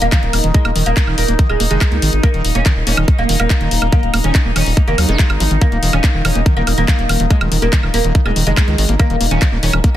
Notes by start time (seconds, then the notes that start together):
Already playing: D#4 A#4 D#5
0.02 D#1 A#3, closed hi-hat
0.12 D#3, kick, clap, closed hi-hat
0.23 D#1, closed hi-hat
0.33 D#1 A#3, open hi-hat, high woodblock
0.44 D#1 D#3, closed hi-hat
0.54 G#3, kick, closed hi-hat
0.65 D#1 A#3, closed hi-hat, high woodblock
0.76 D#1 D#3, open hi-hat
0.86 D#1 A#3, closed hi-hat
0.97 A#3, kick, clap, closed hi-hat
1.07 D#1 D#3, high woodblock
1.18 D#1 A#3, open hi-hat
1.28 D#1 A#3, closed hi-hat
1.39 D#3, kick, closed hi-hat
1.50 D#1 G#3, high woodblock
1.60 D#1 A#3, open hi-hat
1.71 F1 D#3 G#3, closed hi-hat
1.81 kick, clap, closed hi-hat, high woodblock
1.92 C#2 A#3, closed hi-hat
2.02 G#1 D#3, open hi-hat
2.13 G#1, closed hi-hat
2.23 A#3, kick, closed hi-hat, high woodblock
2.34 D#1 D#3, closed hi-hat
2.45 D#1, open hi-hat
2.55 D#1 A#3 C#4, closed hi-hat
2.66 D#3, kick, clap, closed hi-hat, high woodblock
2.76 D#1
2.87 D#1 A#3 C#4, open hi-hat
2.97 D#1 D#3, high woodblock
3.08 kick, closed hi-hat
3.19 D#1 A#3
3.29 D#1 D#3, open hi-hat
3.40 D#1 A#3, closed hi-hat, high woodblock
3.50 A#3, kick, clap, closed hi-hat
3.61 D#1 D#3, closed hi-hat
3.71 D#1, open hi-hat
3.82 D#1 A#3, closed hi-hat, high woodblock
3.92 D#3 A#3, kick, closed hi-hat
4.03 D#1, closed hi-hat
4.14 D#1 A#3, open hi-hat, high woodblock
4.24 D#1 D#3 C#4, closed hi-hat
4.35 kick, clap, closed hi-hat
4.45 D#1 A#3
4.56 D#1 D#3 C#4, open hi-hat, high woodblock
4.66 D#1, open hi-hat
4.77 A#3, kick, closed hi-hat
4.88 F1 D#3 A#3, closed hi-hat
4.98 D#2 F#3, open hi-hat, high woodblock
5.09 F1 G#3 D#4, closed hi-hat
5.19 C#3, kick, clap, closed hi-hat
5.30 G#1, closed hi-hat, high woodblock
5.40 G#1 F3, open hi-hat
5.51 G#1 D#3, closed hi-hat
5.62 D#3 A#3, kick, closed hi-hat
5.72 D#1 A#3, closed hi-hat
5.83 D#1 D#3, open hi-hat
5.93 D#1 D#3 C#4, closed hi-hat, high woodblock
6.04 A#3, kick, clap, closed hi-hat
6.14 D#1 D#3
6.25 D#1 D#3 C#4, open hi-hat, high woodblock
6.35 D#1 A#3, closed hi-hat
6.46 D#3, kick, closed hi-hat
6.57 D#1 D#3 A#3
6.67 D#1 A#3, open hi-hat, high woodblock
6.78 D#1 D#3 A#3, closed hi-hat
6.88 kick, clap, closed hi-hat
6.99 D#1 A#3, closed hi-hat
7.09 D#1 D#3, open hi-hat, high woodblock
7.20 D#1 D#3, closed hi-hat
7.30 G#3 A#3, kick, closed hi-hat
7.41 D#1 D#3, closed hi-hat, high woodblock
7.52 D#1 D#3, open hi-hat
7.62 D#1 A#3, closed hi-hat
7.73 D#3, kick, clap, closed hi-hat
7.83 D#1 D#3, high woodblock
7.94 D#1 A#3, open hi-hat
8.04 D#1 D#3, closed hi-hat
8.15 D#3, kick, closed hi-hat
8.26 D#1 G#3 A#3, high woodblock
8.36 D#1 D#3, open hi-hat
8.47 F1 D#3 G#3, closed hi-hat
8.57 A#3, kick, clap, closed hi-hat, high woodblock
8.68 C#2 D#3, closed hi-hat
8.78 G#1 D#3, open hi-hat
8.89 G#1 A#3, closed hi-hat
8.99 D#3 A#3, kick, closed hi-hat, high woodblock
9.10 D#1 D#3, closed hi-hat
9.21 D#1 A#3, open hi-hat
9.31 D#1 D#3 C#4, closed hi-hat
9.42 kick, clap, closed hi-hat, high woodblock
9.52 D#1 A#3
9.63 D#1 D#3 C#4, open hi-hat
9.73 D#1 D#3, closed hi-hat, high woodblock
9.84 A#3, kick, closed hi-hat